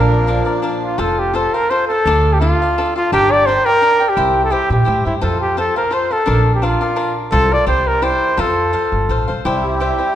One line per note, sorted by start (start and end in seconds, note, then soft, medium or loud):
0.00 0.38 A#1 loud
0.00 0.98 F3 medium
0.00 0.99 A#3 medium
0.00 0.26 D4 medium
0.00 0.99 D4 medium
0.00 0.27 A#4 medium
0.00 0.63 A#4 medium
0.00 0.27 D5 medium
0.00 0.28 F5 medium
0.27 0.47 D4 medium
0.27 0.46 A#4 medium
0.27 0.45 D5 medium
0.27 0.44 F5 medium
0.45 0.62 A#4 soft
0.45 0.61 D5 soft
0.45 0.63 F5 medium
0.62 0.98 D4 medium
0.62 0.98 A#4 medium
0.62 0.99 D5 medium
0.62 0.99 F5 medium
0.83 1.01 F4 medium
0.98 1.45 F1 medium
0.98 1.32 F4 medium
0.98 1.33 A4 medium
0.98 1.21 A4 medium
0.98 1.34 C5 medium
0.98 1.34 F5 medium
1.19 1.36 G4 medium
1.34 1.54 F4 medium
1.34 1.54 A4 medium
1.34 1.55 A4 medium
1.34 1.53 C5 medium
1.34 1.53 F5 medium
1.54 1.70 A4 soft
1.54 1.72 A#4 loud
1.54 1.71 C5 soft
1.54 1.71 F5 medium
1.70 1.90 F4 medium
1.70 1.90 A4 medium
1.70 1.87 C5 loud
1.70 1.89 C5 medium
1.70 1.89 F5 medium
1.88 2.35 A4 medium
1.88 2.06 A4 soft
1.88 2.06 C5 soft
1.88 2.06 F5 soft
2.06 2.52 D2 loud
2.06 2.40 D4 medium
2.06 2.40 A4 medium
2.06 2.41 D5 medium
2.06 2.41 F5 medium
2.33 2.40 G4 medium
2.40 2.60 D4 medium
2.40 2.92 F4 medium
2.40 2.61 A4 medium
2.40 2.61 D5 medium
2.40 2.61 F5 medium
2.62 2.77 A4 soft
2.62 2.77 D5 soft
2.62 2.77 F5 medium
2.78 2.96 D4 medium
2.78 2.97 A4 medium
2.78 2.96 D5 medium
2.78 2.94 F5 medium
2.96 3.11 F4 loud
2.96 3.13 A4 soft
2.96 3.12 D5 soft
2.96 3.12 F5 soft
3.12 3.57 G1 medium
3.12 3.46 D4 medium
3.12 3.33 G4 loud
3.12 3.46 A#4 medium
3.12 3.47 D5 medium
3.12 3.48 G5 medium
3.32 3.48 D5 loud
3.46 3.66 D4 medium
3.46 3.65 A#4 medium
3.46 3.67 C5 loud
3.46 3.65 D5 medium
3.46 3.65 G5 medium
3.66 4.10 A#4 loud
3.66 3.81 A#4 soft
3.66 3.82 D5 soft
3.66 3.82 G5 medium
3.81 4.00 D4 medium
3.81 4.01 A#4 medium
3.81 4.00 D5 medium
3.81 3.98 G5 medium
4.00 4.17 A#4 soft
4.00 4.17 D5 soft
4.00 4.16 G5 soft
4.09 4.44 G4 medium
4.17 4.52 C2 loud
4.17 4.49 E4 medium
4.17 4.50 G4 medium
4.17 4.51 C5 medium
4.17 4.51 E5 medium
4.45 4.54 A4 medium
4.50 4.70 E4 medium
4.50 4.70 G4 medium
4.50 4.71 G4 medium
4.50 4.71 C5 medium
4.50 4.70 E5 medium
4.70 4.85 A#2 medium
4.70 5.04 G4 medium
4.70 4.85 G4 soft
4.70 4.85 C5 soft
4.70 4.87 E5 soft
4.85 5.04 A2 medium
4.85 5.05 E4 soft
4.85 5.06 G4 medium
4.85 5.05 C5 medium
4.85 5.04 E5 medium
5.05 5.21 G2 medium
5.05 5.14 E4 medium
5.05 5.21 G4 soft
5.05 5.20 C5 soft
5.05 5.22 E5 soft
5.21 5.68 F2 medium
5.21 5.57 F4 medium
5.21 5.57 A4 medium
5.21 5.41 A4 medium
5.21 5.57 C5 medium
5.21 5.58 F5 medium
5.41 5.56 G4 medium
5.57 5.76 F4 medium
5.57 5.77 A4 medium
5.57 5.76 A4 medium
5.57 5.76 C5 medium
5.57 5.75 F5 medium
5.76 5.90 A4 soft
5.76 5.96 A#4 medium
5.76 5.91 C5 soft
5.76 5.91 F5 medium
5.91 6.11 F4 medium
5.91 6.11 A4 medium
5.91 6.10 C5 medium
5.91 6.14 C5 medium
5.91 6.09 F5 medium
6.11 6.54 A4 loud
6.11 6.26 A4 soft
6.11 6.27 C5 soft
6.11 6.26 F5 soft
6.26 6.73 A#1 loud
6.26 6.61 D4 medium
6.26 6.62 A#4 medium
6.26 6.62 D5 medium
6.26 6.62 F5 medium
6.55 6.65 G4 medium
6.62 6.81 D4 medium
6.62 7.17 F4 loud
6.62 6.81 A#4 medium
6.62 6.80 D5 medium
6.62 6.80 F5 medium
6.81 6.95 A#4 soft
6.81 6.96 D5 soft
6.81 6.95 F5 medium
6.96 7.32 D4 medium
6.96 7.32 A#4 medium
6.96 7.32 D5 medium
6.96 7.32 F5 medium
7.32 7.55 C2 loud
7.32 7.66 F4 medium
7.32 7.54 A4 loud
7.32 7.67 A4 medium
7.32 7.67 C5 medium
7.32 7.68 F5 medium
7.53 7.67 D5 medium
7.66 8.13 C2 medium
7.66 8.01 E4 medium
7.66 8.01 G4 medium
7.66 7.89 C5 medium
7.66 8.02 C5 medium
7.66 8.02 D5 medium
7.88 8.05 A#4 medium
8.02 8.37 E4 medium
8.02 8.37 G4 medium
8.02 8.38 C5 medium
8.02 8.42 C5 loud
8.02 8.38 D5 medium
8.37 8.73 F2 loud
8.37 8.71 F4 medium
8.37 8.72 A4 medium
8.37 9.30 A4 medium
8.37 8.73 C5 loud
8.37 8.72 F5 medium
8.73 9.08 F4 medium
8.73 9.09 A4 medium
8.73 9.10 C5 medium
8.73 9.09 F5 medium
8.92 9.07 G1 medium
9.09 9.26 A1 medium
9.09 9.29 F4 medium
9.09 9.28 A4 medium
9.09 9.27 C5 medium
9.09 9.26 F5 medium
9.28 9.44 C2 medium
9.28 9.45 A4 soft
9.28 9.45 C5 soft
9.28 9.44 F5 soft
9.45 9.91 C2 loud
9.45 10.15 C3 medium
9.45 10.15 G3 medium
9.45 9.79 E4 medium
9.45 10.15 E4 medium
9.45 9.79 G4 medium
9.45 9.80 C5 medium
9.45 9.80 E5 medium
9.64 10.15 G4 medium
9.80 9.99 E4 medium
9.80 9.99 G4 medium
9.80 9.98 C5 medium
9.80 9.97 E5 medium
9.98 10.13 G4 soft
9.98 10.14 C5 soft
9.98 10.14 E5 medium